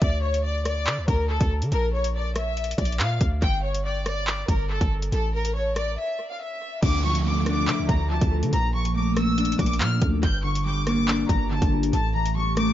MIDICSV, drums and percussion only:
0, 0, Header, 1, 2, 480
1, 0, Start_track
1, 0, Key_signature, -1, "minor"
1, 0, Tempo, 425532
1, 19, Time_signature, 4, 2, 24, 8
1, 14361, End_track
2, 0, Start_track
2, 0, Title_t, "Drums"
2, 19, Note_on_c, 9, 36, 113
2, 19, Note_on_c, 9, 42, 77
2, 132, Note_off_c, 9, 36, 0
2, 132, Note_off_c, 9, 42, 0
2, 384, Note_on_c, 9, 42, 78
2, 497, Note_off_c, 9, 42, 0
2, 738, Note_on_c, 9, 42, 86
2, 739, Note_on_c, 9, 37, 89
2, 851, Note_off_c, 9, 42, 0
2, 852, Note_off_c, 9, 37, 0
2, 979, Note_on_c, 9, 39, 116
2, 1091, Note_off_c, 9, 39, 0
2, 1218, Note_on_c, 9, 36, 90
2, 1220, Note_on_c, 9, 42, 74
2, 1330, Note_off_c, 9, 36, 0
2, 1333, Note_off_c, 9, 42, 0
2, 1586, Note_on_c, 9, 36, 98
2, 1586, Note_on_c, 9, 42, 85
2, 1698, Note_off_c, 9, 36, 0
2, 1698, Note_off_c, 9, 42, 0
2, 1826, Note_on_c, 9, 42, 65
2, 1938, Note_off_c, 9, 42, 0
2, 1938, Note_on_c, 9, 42, 66
2, 2051, Note_off_c, 9, 42, 0
2, 2304, Note_on_c, 9, 42, 78
2, 2417, Note_off_c, 9, 42, 0
2, 2657, Note_on_c, 9, 42, 87
2, 2659, Note_on_c, 9, 37, 91
2, 2770, Note_off_c, 9, 42, 0
2, 2772, Note_off_c, 9, 37, 0
2, 2899, Note_on_c, 9, 42, 65
2, 2978, Note_off_c, 9, 42, 0
2, 2978, Note_on_c, 9, 42, 64
2, 3058, Note_off_c, 9, 42, 0
2, 3058, Note_on_c, 9, 42, 58
2, 3137, Note_on_c, 9, 36, 92
2, 3138, Note_off_c, 9, 42, 0
2, 3138, Note_on_c, 9, 42, 65
2, 3219, Note_off_c, 9, 42, 0
2, 3219, Note_on_c, 9, 42, 60
2, 3250, Note_off_c, 9, 36, 0
2, 3299, Note_off_c, 9, 42, 0
2, 3299, Note_on_c, 9, 42, 65
2, 3379, Note_on_c, 9, 39, 122
2, 3412, Note_off_c, 9, 42, 0
2, 3492, Note_off_c, 9, 39, 0
2, 3617, Note_on_c, 9, 42, 80
2, 3618, Note_on_c, 9, 36, 92
2, 3730, Note_off_c, 9, 42, 0
2, 3731, Note_off_c, 9, 36, 0
2, 3859, Note_on_c, 9, 36, 113
2, 3859, Note_on_c, 9, 42, 78
2, 3972, Note_off_c, 9, 36, 0
2, 3972, Note_off_c, 9, 42, 0
2, 4224, Note_on_c, 9, 42, 77
2, 4337, Note_off_c, 9, 42, 0
2, 4578, Note_on_c, 9, 42, 85
2, 4580, Note_on_c, 9, 37, 88
2, 4691, Note_off_c, 9, 42, 0
2, 4693, Note_off_c, 9, 37, 0
2, 4819, Note_on_c, 9, 39, 122
2, 4932, Note_off_c, 9, 39, 0
2, 5058, Note_on_c, 9, 36, 91
2, 5060, Note_on_c, 9, 42, 74
2, 5171, Note_off_c, 9, 36, 0
2, 5173, Note_off_c, 9, 42, 0
2, 5426, Note_on_c, 9, 36, 97
2, 5426, Note_on_c, 9, 42, 82
2, 5539, Note_off_c, 9, 36, 0
2, 5539, Note_off_c, 9, 42, 0
2, 5667, Note_on_c, 9, 42, 65
2, 5780, Note_off_c, 9, 42, 0
2, 5780, Note_on_c, 9, 42, 65
2, 5893, Note_off_c, 9, 42, 0
2, 6145, Note_on_c, 9, 42, 80
2, 6258, Note_off_c, 9, 42, 0
2, 6499, Note_on_c, 9, 42, 85
2, 6500, Note_on_c, 9, 37, 88
2, 6612, Note_off_c, 9, 42, 0
2, 6613, Note_off_c, 9, 37, 0
2, 7699, Note_on_c, 9, 36, 116
2, 7699, Note_on_c, 9, 42, 78
2, 7699, Note_on_c, 9, 49, 104
2, 7812, Note_off_c, 9, 36, 0
2, 7812, Note_off_c, 9, 42, 0
2, 7812, Note_off_c, 9, 49, 0
2, 8065, Note_on_c, 9, 42, 81
2, 8177, Note_off_c, 9, 42, 0
2, 8418, Note_on_c, 9, 42, 85
2, 8419, Note_on_c, 9, 37, 88
2, 8531, Note_off_c, 9, 42, 0
2, 8532, Note_off_c, 9, 37, 0
2, 8659, Note_on_c, 9, 39, 121
2, 8772, Note_off_c, 9, 39, 0
2, 8898, Note_on_c, 9, 36, 93
2, 8900, Note_on_c, 9, 42, 78
2, 9011, Note_off_c, 9, 36, 0
2, 9013, Note_off_c, 9, 42, 0
2, 9266, Note_on_c, 9, 36, 94
2, 9266, Note_on_c, 9, 42, 83
2, 9379, Note_off_c, 9, 36, 0
2, 9379, Note_off_c, 9, 42, 0
2, 9506, Note_on_c, 9, 42, 70
2, 9619, Note_off_c, 9, 42, 0
2, 9619, Note_on_c, 9, 42, 68
2, 9732, Note_off_c, 9, 42, 0
2, 9985, Note_on_c, 9, 42, 81
2, 10097, Note_off_c, 9, 42, 0
2, 10339, Note_on_c, 9, 42, 88
2, 10340, Note_on_c, 9, 37, 90
2, 10452, Note_off_c, 9, 42, 0
2, 10453, Note_off_c, 9, 37, 0
2, 10580, Note_on_c, 9, 42, 62
2, 10660, Note_off_c, 9, 42, 0
2, 10660, Note_on_c, 9, 42, 65
2, 10739, Note_off_c, 9, 42, 0
2, 10739, Note_on_c, 9, 42, 61
2, 10818, Note_on_c, 9, 36, 96
2, 10820, Note_off_c, 9, 42, 0
2, 10820, Note_on_c, 9, 42, 64
2, 10900, Note_off_c, 9, 42, 0
2, 10900, Note_on_c, 9, 42, 63
2, 10931, Note_off_c, 9, 36, 0
2, 10980, Note_off_c, 9, 42, 0
2, 10980, Note_on_c, 9, 42, 67
2, 11060, Note_on_c, 9, 39, 118
2, 11093, Note_off_c, 9, 42, 0
2, 11173, Note_off_c, 9, 39, 0
2, 11298, Note_on_c, 9, 42, 82
2, 11299, Note_on_c, 9, 36, 98
2, 11411, Note_off_c, 9, 42, 0
2, 11412, Note_off_c, 9, 36, 0
2, 11539, Note_on_c, 9, 42, 78
2, 11540, Note_on_c, 9, 36, 116
2, 11652, Note_off_c, 9, 36, 0
2, 11652, Note_off_c, 9, 42, 0
2, 11904, Note_on_c, 9, 42, 82
2, 12017, Note_off_c, 9, 42, 0
2, 12258, Note_on_c, 9, 42, 87
2, 12260, Note_on_c, 9, 37, 88
2, 12371, Note_off_c, 9, 42, 0
2, 12372, Note_off_c, 9, 37, 0
2, 12499, Note_on_c, 9, 39, 121
2, 12611, Note_off_c, 9, 39, 0
2, 12738, Note_on_c, 9, 36, 93
2, 12740, Note_on_c, 9, 42, 74
2, 12851, Note_off_c, 9, 36, 0
2, 12853, Note_off_c, 9, 42, 0
2, 13106, Note_on_c, 9, 36, 101
2, 13106, Note_on_c, 9, 42, 86
2, 13219, Note_off_c, 9, 36, 0
2, 13219, Note_off_c, 9, 42, 0
2, 13346, Note_on_c, 9, 42, 67
2, 13459, Note_off_c, 9, 42, 0
2, 13459, Note_on_c, 9, 42, 68
2, 13572, Note_off_c, 9, 42, 0
2, 13824, Note_on_c, 9, 42, 81
2, 13937, Note_off_c, 9, 42, 0
2, 14178, Note_on_c, 9, 42, 85
2, 14179, Note_on_c, 9, 37, 90
2, 14291, Note_off_c, 9, 42, 0
2, 14292, Note_off_c, 9, 37, 0
2, 14361, End_track
0, 0, End_of_file